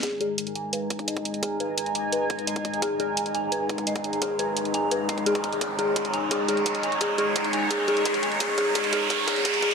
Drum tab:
HH |x-x-xxx-x-xxxxxx|x-x-xxx-x-xxxxxx|x-x-xxx-x-xxxxxx|x-x-xxx-x-xxxxxx|
BD |o---------oo-o--|o---------o--oo-|o---------oo-o--|o---------oo-oo-|

HH |x-x-xxx-x-xxxxxx|x-x-xxx-x-xxxxxx|x-x-xxx-x-xxxxxx|
BD |o---o---o---o---|o---o---o---o---|o-o-o-o-o-o-o-o-|